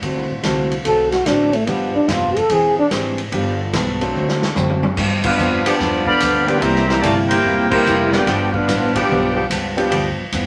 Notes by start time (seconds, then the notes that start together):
0.02 D2 D3 F#3 A3 C4 F#4, kick, ride
0.16 C2
0.30 A1
0.43 C2 D3 A3 C4 F#4, kick, snare, hi-hat pedal, ride
0.71 ride
0.84 B1 D3 A3 C4 F#4 A4, kick, ride
1.12 F#4, snare, ride
1.25 A1 D3 A3 C4 D4 F#4, kick, snare, hi-hat pedal, ride
1.53 A3, ride
1.66 G1 G2 F3 G3 B3 D4 G4, kick, ride
1.94 D4, muted upright bass stroke
2.08 F1 G2 F3 B3 D4 F4, kick, snare, hi-hat pedal, ride
2.36 A4, ride
2.49 E1 E3 C4 D4 G#4, kick, ride
2.77 D4, muted upright bass stroke
2.90 G#1 E3 G#3 C4 D4 G4 G#4, kick, snare, hi-hat pedal, ride
3.18 ride
3.32 G1 G2 F3 G3 B3 D4 G4, kick, ride
3.73 B1 G2 F3 B3 D4, kick, snare, hi-hat pedal, ride
4.01 F#3 A3 C4 D4 A4, ride
4.14 D2 D3 A3 C4 F#4
4.28 snare
4.42 snare
4.55 F#2 D3 A3 C4 F#4, hi-hat pedal, high tom
4.69 high tom
4.83 high tom
4.97 G2 F3 B3 D4, kick, snare, crash
5.24 B3 D4 F4 G4 B4 F5, kick, crash
5.38 F2 G2 F3 B3 D4, hi-hat pedal
5.65 F3 B3 D4 F4 G4 D5, muted upright bass stroke, ride
5.79 E2 G2 F3 B3 D4, kick, snare
6.06 D3 F3 B3 G4 D5 F5 B5, kick
6.20 D2 G2 F3 B3 D4, kick, hi-hat pedal, ride
6.45 E3 G3 A#3 B3 C4 D4 F4 G4 B4 D5 G5, ride
6.59 C2 C3 E3 G3 A#3 G4 C5 E5 A#5, kick, ride
6.63 A#3 E4
6.76 snare
6.87 E3 G3 A#3 C4 G4 C5 E5 A#5, snare
7.02 G1 C3 G3 A3 A#3 E4 F4 A#4 D5 A5, kick, hi-hat pedal, ride
7.28 A#3 E4 G4 A#4 C5 G5, ride
7.44 E1 C3 G3 A#3 E4, kick
7.69 E3 G3 A#3 C4 E4 G4 A#4 C5 G5, kick, crash
7.85 F1 C3 E3 G3 A#3 C4 E4 G4, hi-hat pedal
8.12 B3 D4 F4 G4 B4 D5 G5, snare
8.26 G1 G2 F3 G3 B3 D4 G4, kick, snare, ride
8.53 B3 D4 F4 G4 B4 F5, kick
8.68 A1 G2 F3 B3 D4, kick, snare, hi-hat pedal, ride
8.94 F3 B3 D4 F4 G4 B4 D5 G5, kick, ride
9.09 B1 G2 F3 B3 D4, kick
9.35 F3 B3 D4 G4
9.50 C#2 G2 F3 B3 D4, kick, hi-hat pedal, ride
9.77 F3 G3 B3 D4 G4, ride
9.89 D2 G2 F3 B3 D4 G4, kick, ride
9.93 B3 D4
10.18 muted upright bass stroke
10.32 E2 G2 F3 B3 D4, kick, hi-hat pedal, ride